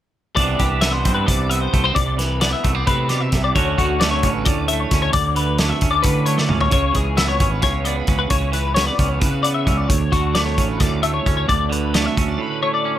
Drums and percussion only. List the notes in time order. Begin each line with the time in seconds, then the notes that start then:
0.37 kick, closed hi-hat
0.59 kick, closed hi-hat
0.81 snare, closed hi-hat
1.05 kick, closed hi-hat
1.28 kick, closed hi-hat
1.51 closed hi-hat
1.73 kick, closed hi-hat
1.96 kick, closed hi-hat
2.19 snare, closed hi-hat
2.41 snare, closed hi-hat
2.64 kick, closed hi-hat
2.87 kick, closed hi-hat
3.09 snare, closed hi-hat
3.32 kick, snare, closed hi-hat
3.56 kick, closed hi-hat
3.78 kick, closed hi-hat
4.01 snare, closed hi-hat
4.23 kick, closed hi-hat
4.45 kick, closed hi-hat
4.68 closed hi-hat
4.91 kick, snare, closed hi-hat
5.13 kick, closed hi-hat
5.36 closed hi-hat
5.58 snare, closed hi-hat
5.81 kick, closed hi-hat
6.03 kick, closed hi-hat
6.26 closed hi-hat
6.38 snare
6.49 mid tom
6.61 floor tom
6.71 kick, closed hi-hat
6.94 kick, closed hi-hat
7.17 snare, closed hi-hat
7.40 kick, closed hi-hat
7.62 kick, snare, closed hi-hat
7.85 closed hi-hat
8.07 kick, closed hi-hat
8.30 kick, closed hi-hat
8.53 closed hi-hat
8.76 snare, closed hi-hat
8.99 kick, closed hi-hat
9.21 kick, closed hi-hat
9.44 closed hi-hat
9.67 kick, closed hi-hat
9.90 kick, closed hi-hat
10.13 kick, closed hi-hat
10.35 snare, closed hi-hat
10.58 kick, closed hi-hat
10.80 kick, snare, closed hi-hat
11.03 closed hi-hat
11.26 kick, closed hi-hat
11.49 kick, closed hi-hat
11.72 closed hi-hat
11.94 snare, closed hi-hat
12.17 kick, closed hi-hat